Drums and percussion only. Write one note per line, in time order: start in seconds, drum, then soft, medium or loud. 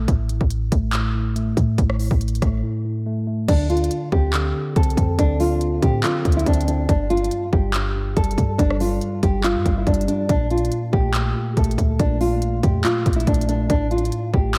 0.08 kick loud
0.08 closed hi-hat medium
0.29 closed hi-hat medium
0.41 kick medium
0.50 closed hi-hat medium
0.72 kick loud
0.72 closed hi-hat medium
0.93 clap loud
0.93 closed hi-hat medium
1.36 closed hi-hat medium
1.57 kick medium
1.57 closed hi-hat medium
1.78 kick loud
1.78 closed hi-hat medium
1.90 cross-stick medium
1.99 open hi-hat medium
2.11 kick medium
2.21 closed hi-hat medium
2.28 closed hi-hat medium
2.35 closed hi-hat medium
2.42 kick loud
2.42 cross-stick medium
2.42 closed hi-hat medium
3.48 kick loud
3.48 closed hi-hat medium
3.48 crash loud
3.70 closed hi-hat soft
3.77 closed hi-hat medium
3.84 closed hi-hat medium
3.91 closed hi-hat medium
4.12 kick loud
4.33 clap loud
4.33 closed hi-hat medium
4.76 kick medium
4.76 closed hi-hat medium
4.83 closed hi-hat medium
4.90 closed hi-hat medium
4.97 kick medium
4.97 closed hi-hat medium
5.19 kick loud
5.19 closed hi-hat medium
5.40 open hi-hat medium
5.61 closed hi-hat medium
5.82 kick loud
5.82 closed hi-hat medium
6.04 clap loud
6.04 closed hi-hat medium
6.25 kick loud
6.25 closed hi-hat medium
6.32 closed hi-hat medium
6.39 closed hi-hat medium
6.46 kick medium
6.46 closed hi-hat medium
6.53 closed hi-hat medium
6.61 closed hi-hat medium
6.68 closed hi-hat medium
6.89 kick loud
6.89 closed hi-hat medium
7.10 closed hi-hat soft
7.17 closed hi-hat medium
7.24 closed hi-hat medium
7.31 closed hi-hat medium
7.53 kick loud
7.74 clap loud
7.74 closed hi-hat medium
8.17 kick medium
8.17 closed hi-hat medium
8.24 closed hi-hat medium
8.31 closed hi-hat medium
8.38 kick medium
8.38 closed hi-hat medium
8.59 kick loud
8.59 closed hi-hat medium
8.70 cross-stick medium
8.80 open hi-hat medium
9.01 closed hi-hat medium
9.23 kick loud
9.23 closed hi-hat medium
9.44 clap loud
9.44 closed hi-hat medium
9.66 kick loud
9.66 closed hi-hat medium
9.87 kick medium
9.87 closed hi-hat medium
9.94 closed hi-hat medium
10.01 closed hi-hat medium
10.08 closed hi-hat medium
10.29 kick loud
10.29 closed hi-hat medium
10.50 closed hi-hat soft
10.58 closed hi-hat medium
10.65 closed hi-hat medium
10.72 closed hi-hat medium
10.93 kick loud
11.14 clap loud
11.14 closed hi-hat medium
11.57 kick medium
11.57 closed hi-hat medium
11.64 closed hi-hat medium
11.71 closed hi-hat medium
11.78 kick medium
11.78 closed hi-hat medium
11.99 kick loud
11.99 closed hi-hat medium
12.21 open hi-hat medium
12.42 closed hi-hat medium
12.63 kick loud
12.63 closed hi-hat medium
12.85 clap loud
12.85 closed hi-hat medium
13.06 kick loud
13.06 closed hi-hat medium
13.13 closed hi-hat medium
13.20 closed hi-hat medium
13.27 kick medium
13.27 closed hi-hat medium
13.34 closed hi-hat medium
13.41 closed hi-hat medium
13.49 closed hi-hat medium
13.70 kick loud
13.70 closed hi-hat medium
13.91 closed hi-hat soft
13.98 closed hi-hat medium
14.05 closed hi-hat medium
14.12 closed hi-hat medium
14.34 kick loud
14.55 clap loud